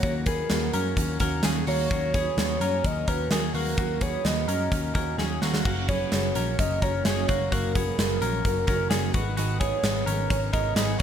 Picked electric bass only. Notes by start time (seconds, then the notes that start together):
0.03 D#2
0.50 D#2
0.74 F#2
0.97 D#2
1.20 D#2
1.44 D#2
1.67 D#2
1.91 D#2
2.37 D#2
2.60 F#2
2.85 D#2
3.08 D#2
3.31 D#2
3.54 D#2
3.78 D#2
4.25 D#2
4.48 F#2
4.72 D#2
4.95 D#2
5.18 D#2
5.42 D#2
5.65 F#1
6.12 F#1
6.36 A#1
6.59 F#1
6.82 F#1
7.06 F#1
7.29 F#1
7.52 F#1
7.98 F#1
8.21 A#1
8.45 F#1
8.68 F#1
8.91 F#1
9.14 G#1
9.83 G#1
10.07 G#1
10.30 G#1
10.53 G#1
10.76 G#1